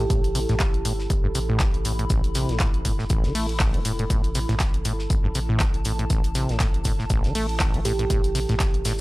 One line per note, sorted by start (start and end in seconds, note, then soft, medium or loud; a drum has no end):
0.00 9.01 E4 medium
0.00 9.01 A4 medium
0.00 0.67 A5 medium
0.10 0.46 A1 loud
0.10 0.22 A2 medium
0.10 kick loud
0.10 closed hi-hat medium
0.10 shaker medium
0.24 closed hi-hat soft
0.35 0.40 C3 medium
0.35 open hi-hat loud
0.35 shaker medium
0.49 0.82 A1 medium
0.49 0.55 A2 loud
0.49 snare soft
0.49 closed hi-hat soft
0.60 kick loud
0.60 snare loud
0.60 clap loud
0.60 closed hi-hat medium
0.60 shaker medium
0.64 4.67 B5 medium
0.74 closed hi-hat soft
0.85 1.07 G1 medium
0.85 0.93 A2 medium
0.85 open hi-hat medium
0.85 shaker medium
0.99 snare soft
1.10 1.32 A1 medium
1.10 1.15 A1 medium
1.10 kick loud
1.10 closed hi-hat medium
1.10 shaker medium
1.24 1.28 G2 loud
1.35 1.71 A1 medium
1.35 1.40 C3 medium
1.35 open hi-hat loud
1.35 shaker medium
1.49 1.62 A2 loud
1.60 1.65 A3 loud
1.60 kick loud
1.60 snare loud
1.60 clap loud
1.60 closed hi-hat medium
1.60 shaker medium
1.74 2.07 A1 medium
1.74 closed hi-hat soft
1.85 1.93 A2 medium
1.85 open hi-hat loud
1.85 shaker medium
1.99 2.05 A2 medium
1.99 closed hi-hat medium
2.10 2.22 A1 loud
2.10 2.46 A1 loud
2.10 kick loud
2.10 closed hi-hat medium
2.10 shaker medium
2.24 closed hi-hat soft
2.35 2.51 C3 medium
2.35 snare medium
2.35 open hi-hat loud
2.35 shaker medium
2.49 2.82 A1 medium
2.49 2.58 A2 medium
2.49 snare soft
2.49 closed hi-hat soft
2.60 2.68 A2 medium
2.60 kick loud
2.60 snare loud
2.60 clap loud
2.60 closed hi-hat medium
2.60 shaker medium
2.74 closed hi-hat soft
2.85 3.07 G1 medium
2.85 2.93 A2 medium
2.85 kick medium
2.85 open hi-hat loud
2.85 shaker medium
2.99 3.05 A2 medium
2.99 snare soft
3.09 3.26 A1 loud
3.09 3.32 A1 medium
3.09 kick loud
3.09 closed hi-hat medium
3.09 shaker medium
3.24 3.33 E3 medium
3.24 snare soft
3.24 closed hi-hat soft
3.35 3.71 A1 medium
3.35 3.47 A3 medium
3.35 open hi-hat loud
3.35 open hi-hat medium
3.49 closed hi-hat soft
3.60 3.76 A1 medium
3.60 kick loud
3.60 snare loud
3.60 clap loud
3.60 closed hi-hat medium
3.60 shaker medium
3.74 4.07 E1 medium
3.74 3.80 A3 medium
3.74 closed hi-hat soft
3.85 3.93 A2 medium
3.85 open hi-hat loud
3.85 shaker medium
3.99 4.05 A2 medium
3.99 closed hi-hat soft
4.10 4.46 A1 loud
4.10 4.22 A2 medium
4.10 kick loud
4.10 closed hi-hat medium
4.10 shaker medium
4.24 closed hi-hat soft
4.35 4.40 C3 medium
4.35 open hi-hat loud
4.35 shaker medium
4.49 4.82 A1 medium
4.49 4.55 A2 loud
4.49 snare soft
4.49 closed hi-hat soft
4.60 kick loud
4.60 snare loud
4.60 clap loud
4.60 closed hi-hat medium
4.60 shaker medium
4.64 8.67 A5 medium
4.74 closed hi-hat soft
4.85 5.07 G1 medium
4.85 4.93 A2 medium
4.85 open hi-hat medium
4.85 shaker medium
4.99 snare soft
5.10 5.15 A1 medium
5.10 5.32 A1 medium
5.10 kick loud
5.10 closed hi-hat medium
5.10 shaker medium
5.24 5.28 G2 loud
5.35 5.71 A1 medium
5.35 5.40 C3 medium
5.35 open hi-hat loud
5.35 shaker medium
5.49 5.62 A2 loud
5.59 5.65 A3 loud
5.59 kick loud
5.59 snare loud
5.59 clap loud
5.59 closed hi-hat medium
5.59 shaker medium
5.74 6.07 A1 medium
5.74 closed hi-hat soft
5.85 5.93 A2 medium
5.85 open hi-hat medium
5.85 shaker medium
5.99 6.05 A2 medium
5.99 closed hi-hat soft
6.10 6.22 A1 loud
6.10 6.46 A1 loud
6.10 kick loud
6.10 closed hi-hat medium
6.10 shaker medium
6.24 closed hi-hat soft
6.24 closed hi-hat medium
6.35 6.51 C3 medium
6.35 snare soft
6.35 open hi-hat loud
6.35 shaker medium
6.49 6.82 A1 medium
6.49 6.58 A2 medium
6.49 snare soft
6.49 closed hi-hat soft
6.60 6.68 A2 medium
6.60 kick loud
6.60 snare loud
6.60 clap loud
6.60 closed hi-hat medium
6.60 shaker medium
6.74 closed hi-hat soft
6.84 7.07 G1 medium
6.84 6.93 A2 medium
6.84 kick medium
6.84 open hi-hat medium
6.84 shaker medium
6.99 7.05 A2 medium
6.99 snare soft
7.10 7.26 A1 loud
7.10 7.32 A1 medium
7.10 kick loud
7.10 closed hi-hat medium
7.10 shaker medium
7.24 7.33 E3 medium
7.24 snare soft
7.24 closed hi-hat soft
7.35 7.71 A1 medium
7.35 7.47 A3 medium
7.35 open hi-hat medium
7.35 open hi-hat loud
7.49 closed hi-hat soft
7.60 7.76 A1 medium
7.60 kick loud
7.60 snare loud
7.60 clap loud
7.60 closed hi-hat medium
7.60 shaker medium
7.74 8.07 A1 medium
7.74 7.80 A3 medium
7.74 closed hi-hat soft
7.85 7.93 A2 medium
7.85 7.94 G4 medium
7.85 open hi-hat medium
7.85 shaker medium
7.99 8.05 A2 medium
7.99 8.06 G4 medium
7.99 closed hi-hat medium
8.10 8.46 A1 loud
8.10 8.22 A2 medium
8.10 kick loud
8.10 closed hi-hat medium
8.10 shaker medium
8.24 closed hi-hat medium
8.35 8.40 C3 medium
8.35 open hi-hat loud
8.35 shaker medium
8.49 8.82 A1 medium
8.49 8.55 A2 loud
8.49 snare soft
8.49 closed hi-hat soft
8.60 kick loud
8.60 snare loud
8.60 clap loud
8.60 closed hi-hat medium
8.60 shaker medium
8.64 9.01 D5 medium
8.74 closed hi-hat soft
8.85 9.01 G1 medium
8.85 8.93 A2 medium
8.85 snare loud
8.85 open hi-hat medium
8.85 shaker medium